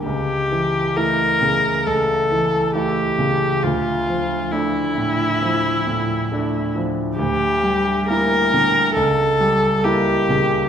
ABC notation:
X:1
M:4/4
L:1/8
Q:1/4=68
K:Aphr
V:1 name="Viola"
G2 B2 A2 G2 | F2 E4- E z | G2 B2 A2 G2 |]
V:2 name="Grand piano" clef=bass
^C,, E, [A,E] ^C, C,, E, [A,E] C, | D,, F, [A,D] A,, F, A,, [A,D] F, | D,, G, [B,E] D, ^C,, G, [^A,E] ^C, |]